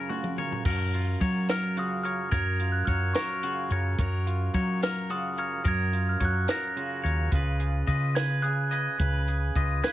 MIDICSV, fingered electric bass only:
0, 0, Header, 1, 2, 480
1, 0, Start_track
1, 0, Key_signature, 6, "major"
1, 0, Tempo, 556586
1, 555, Time_signature, 6, 3, 24, 8
1, 8559, End_track
2, 0, Start_track
2, 0, Title_t, "Fingered electric bass"
2, 0, Program_c, 0, 33
2, 565, Note_on_c, 0, 42, 99
2, 989, Note_off_c, 0, 42, 0
2, 1044, Note_on_c, 0, 54, 100
2, 1897, Note_off_c, 0, 54, 0
2, 2001, Note_on_c, 0, 42, 106
2, 2426, Note_off_c, 0, 42, 0
2, 2476, Note_on_c, 0, 42, 95
2, 2690, Note_off_c, 0, 42, 0
2, 3193, Note_on_c, 0, 42, 96
2, 3408, Note_off_c, 0, 42, 0
2, 3437, Note_on_c, 0, 42, 105
2, 3864, Note_off_c, 0, 42, 0
2, 3918, Note_on_c, 0, 54, 102
2, 4772, Note_off_c, 0, 54, 0
2, 4875, Note_on_c, 0, 42, 105
2, 5303, Note_off_c, 0, 42, 0
2, 5351, Note_on_c, 0, 42, 90
2, 5567, Note_off_c, 0, 42, 0
2, 6073, Note_on_c, 0, 39, 91
2, 6288, Note_off_c, 0, 39, 0
2, 6313, Note_on_c, 0, 37, 98
2, 6741, Note_off_c, 0, 37, 0
2, 6789, Note_on_c, 0, 49, 100
2, 7647, Note_off_c, 0, 49, 0
2, 7757, Note_on_c, 0, 37, 105
2, 8184, Note_off_c, 0, 37, 0
2, 8242, Note_on_c, 0, 37, 88
2, 8452, Note_off_c, 0, 37, 0
2, 8559, End_track
0, 0, End_of_file